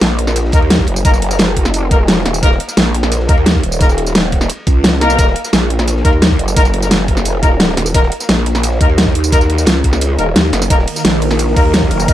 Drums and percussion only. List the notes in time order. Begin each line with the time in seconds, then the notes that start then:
0.01 snare, closed hi-hat, ride, tambourine
0.18 closed hi-hat, ride
0.27 snare, tambourine
0.36 closed hi-hat, ride, tambourine
0.45 snare
0.52 kick, closed hi-hat, ride, tambourine
0.62 ride
0.70 snare, closed hi-hat, ride, tambourine
0.78 kick, snare
0.87 closed hi-hat, ride
0.96 tambourine
1.05 kick, closed hi-hat, ride, tambourine
1.13 snare, tambourine
1.22 closed hi-hat, ride
1.30 snare, tambourine
1.39 snare, closed hi-hat, ride, tambourine
1.56 kick, closed hi-hat, ride
1.65 snare, tambourine
1.74 closed hi-hat, ride, tambourine
1.91 kick, closed hi-hat, ride, tambourine
2.07 snare, closed hi-hat, ride, tambourine
2.25 snare, closed hi-hat, ride, tambourine
2.34 snare, tambourine
2.43 kick, closed hi-hat, ride, tambourine
2.51 snare
2.60 closed hi-hat, ride
2.68 snare, tambourine
2.77 snare, closed hi-hat, ride, tambourine
2.94 closed hi-hat, ride
3.03 snare, tambourine
3.12 closed hi-hat, ride, tambourine
3.20 snare
3.28 kick, closed hi-hat, ride, tambourine
3.37 ride
3.46 snare, closed hi-hat, ride, tambourine
3.55 kick, snare
3.63 closed hi-hat, ride
3.72 tambourine
3.80 kick, closed hi-hat, ride, tambourine
3.89 snare, tambourine
3.98 closed hi-hat, ride
4.07 snare, tambourine
4.15 snare, closed hi-hat, ride, tambourine
4.32 kick, closed hi-hat, ride
4.41 snare, tambourine
4.49 closed hi-hat, ride, tambourine
4.67 kick, closed hi-hat, ride, tambourine
4.84 snare, closed hi-hat, ride, tambourine
5.01 snare, closed hi-hat, ride, tambourine
5.10 snare, tambourine
5.19 kick, closed hi-hat, ride, tambourine
5.27 snare
5.35 closed hi-hat, ride
5.44 snare, tambourine
5.53 snare, closed hi-hat, ride, tambourine
5.70 closed hi-hat, ride
5.79 snare, tambourine
5.88 closed hi-hat, ride, tambourine
5.97 snare
6.05 kick, closed hi-hat, ride, tambourine
6.13 ride
6.22 snare, closed hi-hat, ride, tambourine
6.31 kick, snare
6.39 closed hi-hat, ride
6.48 tambourine
6.56 kick, closed hi-hat, ride, tambourine
6.65 snare, tambourine
6.73 closed hi-hat, ride
6.82 snare, tambourine
6.91 snare, closed hi-hat, ride, tambourine
7.08 kick, closed hi-hat, ride
7.17 snare, tambourine
7.25 closed hi-hat, ride, tambourine
7.43 kick, closed hi-hat, ride, tambourine
7.60 snare, closed hi-hat, ride, tambourine
7.77 snare, closed hi-hat, ride, tambourine
7.86 snare, tambourine
7.94 kick, closed hi-hat, ride, tambourine
8.03 snare
8.12 closed hi-hat, ride
8.20 snare, tambourine
8.29 snare, closed hi-hat, ride, tambourine
8.46 closed hi-hat, ride
8.55 snare, tambourine
8.63 closed hi-hat, ride, tambourine
8.72 snare
8.81 kick, closed hi-hat, ride, tambourine
8.89 ride
8.98 snare, closed hi-hat, ride, tambourine
9.06 kick, snare
9.15 closed hi-hat, ride
9.24 tambourine
9.32 kick, closed hi-hat, ride, tambourine
9.41 snare, tambourine
9.50 closed hi-hat, ride
9.58 snare, tambourine
9.66 snare, closed hi-hat, ride, tambourine
9.84 kick, closed hi-hat, ride
9.93 snare, tambourine
10.01 closed hi-hat, ride, tambourine
10.19 closed hi-hat, ride, tambourine
10.36 snare, closed hi-hat, ride, tambourine
10.53 snare, closed hi-hat, ride, tambourine
10.62 snare, tambourine
10.70 kick, closed hi-hat, ride, tambourine
10.79 snare
10.87 closed hi-hat, ride
10.96 snare, tambourine
11.04 snare, closed hi-hat, ride, tambourine
11.22 closed hi-hat, ride
11.31 snare, tambourine
11.39 closed hi-hat, ride, tambourine
11.48 snare
11.56 kick, closed hi-hat, ride, tambourine
11.65 ride
11.74 snare, closed hi-hat, ride, tambourine
11.82 kick, snare
11.91 closed hi-hat, ride
12.00 tambourine
12.08 kick, closed hi-hat, ride, tambourine